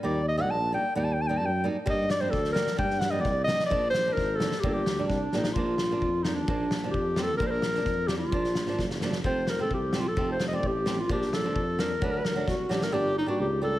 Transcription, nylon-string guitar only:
\new Staff \with { instrumentName = "Nylon-string guitar" } { \time 2/4 \key g \minor \tempo 4 = 130 <g bes ees'>8 r16 <g bes ees'>16 r8 <g bes ees'>16 r16 | <g bes ees'>8 r16 <g bes ees'>16 r8 <g bes ees'>16 r16 | <g bes d'>8 r16 <g bes d'>16 r8 <g bes d'>16 r16 | <g bes d'>8 r16 <g bes d'>16 r8 <g bes d'>16 r16 |
<f bes d'>8 r16 <f bes d'>16 r8 <f bes d'>16 r16 | <g bes d'>8 r16 <g bes d'>16 r8 <g bes d'>16 r16 | \key bes \major <f bes d'>8 r16 <f bes d'>16 r8 <f bes d'>16 r16 | <f bes d'>8 r16 <f bes d'>16 r8 <f bes c'>16 r16 |
<f bes d'>8 r16 <f bes d'>16 r8 <f bes d'>16 r16 | <f bes d'>8 r16 <f bes d'>16 r8 <f bes d'>16 r16 | <f a c'>8 r16 <f a c'>16 r8 <f a c'>16 r16 | <f a c'>8 r16 <f a c'>16 r8 <f a c'>16 r16 |
<f bes d'>8 r16 <f bes d'>16 r8 <f bes d'>16 r16 | <fis a d'>8 r16 <fis a d'>16 r8 <fis a d'>16 r16 | \key g \minor <g bes d'>8 r16 <g bes d'>16 r8 <g bes d'>16 r16 | }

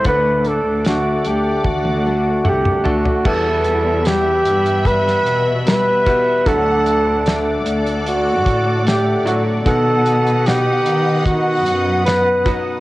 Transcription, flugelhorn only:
\new Staff \with { instrumentName = "Flugelhorn" } { \time 4/4 \key e \minor \tempo 4 = 75 b'8 a'8 fis'8 g'8 fis'4 g'8 fis'8 | a'4 g'4 b'4 b'4 | a'4. r8 fis'4 g'8 fis'8 | a'4 g'4 fis'4 b'8 r8 | }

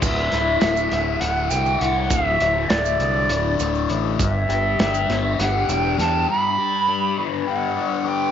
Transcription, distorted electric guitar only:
\new Staff \with { instrumentName = "Distorted electric guitar" } { \time 7/8 \key d \mixolydian \tempo 4 = 101 d,8 e'8 a8 d8 e'8 a8 e'8 | d,8 e'8 a8 d8 e'8 a8 e'8 | g,8 g'8 d'8 b8 g'8 d'8 g'8 | g,8 g'8 d'8 b8 g'8 d'8 g'8 | }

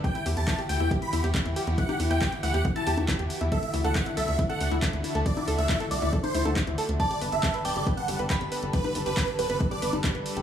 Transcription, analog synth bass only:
\new Staff \with { instrumentName = "Analog synth bass" } { \clef bass \time 4/4 \key g \major \tempo 4 = 138 r8 e,16 e,16 r8 d,16 e,16 r8 e,16 e,16 r16 e,16 r16 e,16 | r8 e,16 e,16 r8 d,16 e,16 r8 e,16 e,16 r16 e,16 r16 e,16 | r8 d,16 d,16 r8 c,16 d,16 r8 d,16 d,16 r16 d,16 r16 d,16 | r8 d,16 d,16 r8 c,16 d,16 r8 d,16 d,16 r16 d,16 r16 d,16 |
r8 g,,16 g,,16 r8 d,,16 g,,16 r8 g,,16 g,,16 r16 g,,16 r16 g,,16 | r8 g,,16 g,,16 r8 d,,16 g,,16 r8 g,,16 g,,16 r16 g,,16 r16 g,,16 | }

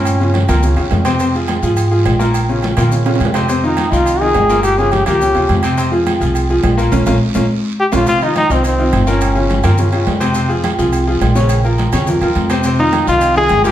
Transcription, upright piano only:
\new Staff \with { instrumentName = "Upright piano" } { \time 4/4 \key f \minor \tempo 4 = 210 <bes, bes bes'>8 <des des' f'>4 <bes, bes bes'>8 <des des' f'>8 <des des' f'>4 <c c' c''>8 | <c c' c''>8 <f f' aes'>4 <f f' aes'>4 <f f' aes'>4 <bes, bes bes'>8~ | <bes, bes bes'>8 <des des' f'>4 <bes, bes bes'>8 <des des' f'>8 <des des' f'>4 <c c' c''>8 | <c c' c''>8 <ees ees' f'>4 <ees ees' f'>4 <ees ees' f'>4 <bes, bes bes'>8~ |
<bes, bes bes'>8 <des des' f'>4 <bes, bes bes'>8 <des des' f'>8 <des des' f'>4 <c c' c''>8 | <c c' c''>8 <f f' aes'>4 <f f' aes'>4 <f f' aes'>4 <bes, bes bes'>8 | <bes des' f'>8 <bes des' f'>8 r8 <bes des' f'>8 r4. <bes des' f'>8 | <c c' c''>8 <ees ees' f'>4 <ees ees' f'>4 <ees ees' f'>4 <bes, bes bes'>8~ |
<bes, bes bes'>8 <des des' f'>4 <bes, bes bes'>8 <des des' f'>8 <des des' f'>4 <c c' c''>8 | <c c' c''>8 <f f' aes'>4 <f f' aes'>4 <f f' aes'>4 <des des' des''>8~ | <des des' des''>8 <f f' bes'>4 <des des' des''>8 <f f' bes'>8 <f f' bes'>4 <c c' c''>8 | <c c' c''>8 <ees ees' f'>4 <ees ees' f'>4 <ees ees' f'>4 <bes, bes bes'>8 | }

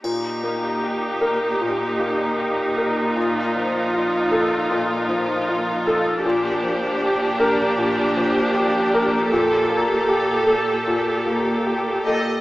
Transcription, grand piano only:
\new Staff \with { instrumentName = "Grand piano" } { \time 4/4 \key ees \lydian \tempo 4 = 78 bes,8 bes8 g'8 bes'8 bes,8 bes8 g'8 bes'8 | bes,8 f8 f'8 a'8 bes,8 f8 f'8 a'8 | bes,8 f8 g'8 bes'8 bes,8 f8 g'8 bes'8 | bes,8 bes8 g'8 a'8 bes,8 bes8 g'8 a'8 | }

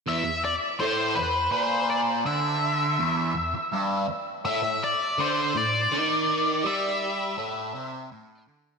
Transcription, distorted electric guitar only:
\new Staff \with { instrumentName = "Distorted electric guitar" } { \clef bass \time 6/8 \key a \dorian \tempo 4. = 55 e,16 e,8 r16 a,8 e,8 ais,4 | d4 e,8 e,16 r16 g,8 r8 | a,16 a,8 r16 d8 a,8 dis4 | g4 a,8 c8 a,8 d8 | }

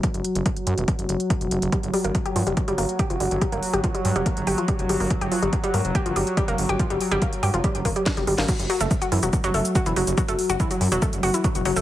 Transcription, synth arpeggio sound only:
\new Staff \with { instrumentName = "Synth arpeggio sound" } { \clef bass \time 4/4 \key g \lydian \tempo 4 = 142 r1 | g16 r16 g16 bes16 r16 g'16 eis16 g16 r16 g16 bes16 r16 g'16 eis16 g16 r16 | g16 bes16 r16 g'16 eis16 g16 r16 g16 bes16 r16 g'16 eis16 g16 r16 g16 bes16 | r16 g'16 eis16 g16 r16 g16 bes16 r16 g'16 eis16 g16 r16 g16 bes16 r16 g'16 |
eis16 g16 r16 g16 bes16 r16 g'16 eis16 g16 r16 bes16 g16 r16 g16 g16 bes16 | fis16 r16 fis16 a16 r16 fis'16 e16 fis16 r16 fis16 a16 r16 fis'16 e16 fis16 r16 | fis16 a16 r16 fis'16 e16 fis16 r16 fis16 a16 r16 fis'16 e16 fis16 r16 fis16 a16 | }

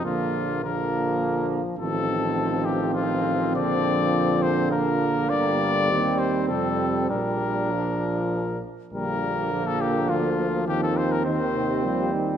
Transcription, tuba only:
\new Staff \with { instrumentName = "Tuba" } { \clef bass \time 3/4 \key bes \major \tempo 4 = 103 bes,,2. | a,,2. | bes,,2. | g,,4 ees,4 f,4 |
bes,,2~ bes,,8 r8 | bes,,2 d,4 | ees,2. | }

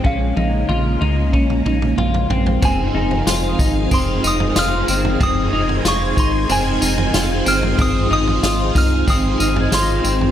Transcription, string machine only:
\new Staff \with { instrumentName = "String machine" } { \time 4/4 \key f \minor \tempo 4 = 93 << { bes1 | f''1 | aes''1 | f''1 | } \\ { <des aes>1 | <c' ees' aes'>1~ | <c' ees' aes'>1~ | <c' ees' aes'>1 | } >> }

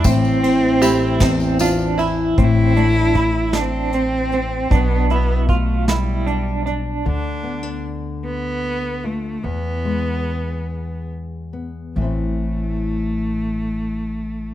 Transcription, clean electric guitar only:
\new Staff \with { instrumentName = "Clean electric guitar" } { \time 6/8 \key a \minor \tempo 4. = 51 c'8 c'8 e'8 c'8 d'8 e'8 | c'8 d'8 e'8 d'8 c'8 c'8 | d'8 e'8 f'8 e'8 d'8 d'8 | r2. |
r2. | r2. | }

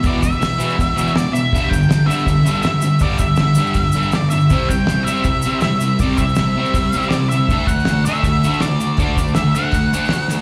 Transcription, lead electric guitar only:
\new Staff \with { instrumentName = "Lead electric guitar" } { \time 4/4 \key c \lydian \tempo 4 = 161 d''8 e''2~ e''8 d''8 e''8~ | e''8 g''4 e''4. e''4 | d''8 e''2~ e''8 d''8 e''8~ | e''8 g''4 e''4. e''4 |
d''8 e''2~ e''8 d''8 e''8~ | e''8 fis''4 e''4. d''4 | d''4 e''8 fis''2 r8 | }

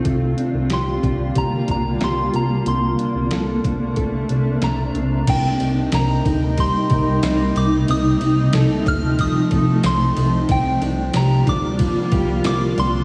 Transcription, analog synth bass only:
\new Staff \with { instrumentName = "Analog synth bass" } { \clef bass \time 4/4 \key c \dorian \tempo 4 = 92 c,8 r16 c,16 c,8 c,8 c,8 c,8 c,8 c,8 | c,8 r16 c,16 c,8 c,8 c,8 c,8 c,8 c,8 | c,8 c,8 c,8 d,8. r16 c,8 c,8 c,8 | c,8 c,8 c,8 d,8. r16 c,8 c,8 c,8 |
c,8 c,8 c,8 d,8. r16 c,8 c,8 c,8 | }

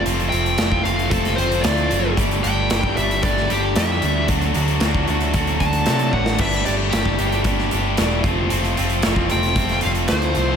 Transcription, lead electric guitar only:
\new Staff \with { instrumentName = "Lead electric guitar" } { \time 4/4 \key f \lydian \tempo 4 = 114 r8 g''4 f''8 a'8 c''8 d''4 | r8 g''4 e''8 d''8 g'8 e''4 | r2 r8 a''4 fis''8 | e''8 d''8 g'4 r2 |
r4. g''4 f''8 c''4 | }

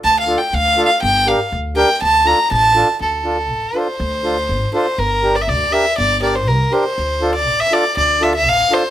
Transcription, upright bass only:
\new Staff \with { instrumentName = "Upright bass" } { \clef bass \time 2/4 \key d \minor \tempo 4 = 121 d,4 d,4 | g,,4 d,4 | d,4 a,,4 | d,4 a,,8 r8 |
d,4 gis,,8 r8 | g,,4 d,8 r8 | g,,4 c,8 r8 | d,4 a,,8 r8 |
d,4 a,,8 r8 | }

